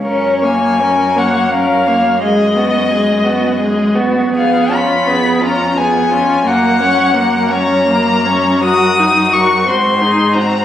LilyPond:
<<
  \new Staff \with { instrumentName = "Violin" } { \time 6/8 \key fis \major \tempo 4. = 57 cis''8 gis''4 fis''8 eis''4 | dis''2~ dis''8 r8 | eis''8 b''4 ais''8 gis''4 | fis''4. ais''4. |
\key ees \dorian ees'''4 des'''8 c'''4 bes''8 | }
  \new Staff \with { instrumentName = "Violin" } { \time 6/8 \key fis \major ais'8 cis''8 ais'8 cis''8 ais'8 cis''8 | gis'8 fis'8 gis'8 fis'8 gis'8 fis'8 | gis'8 eis'8 gis'8 eis'8 gis'8 eis'8 | ais'8 cis''8 ais'8 cis''8 ais'8 cis''8 |
\key ees \dorian bes'8 ges'8 bes'8 ges'8 aes'8 ges'8 | }
  \new Staff \with { instrumentName = "Viola" } { \time 6/8 \key fis \major cis'8 ais8 cis'8 ais8 cis'8 ais8 | gis8 b8 gis8 b8 gis8 b8 | b8 cis'8 b8 cis'8 b8 cis'8 | ais8 cis'8 ais8 cis'8 ais8 cis'8 |
\key ees \dorian ges'8 ees'8 ges'8 c'8 ees'8 c'8 | }
  \new Staff \with { instrumentName = "Cello" } { \clef bass \time 6/8 \key fis \major fis,2.~ | fis,2. | eis,2. | fis,2.~ |
\key ees \dorian fis,4. aes,4. | }
>>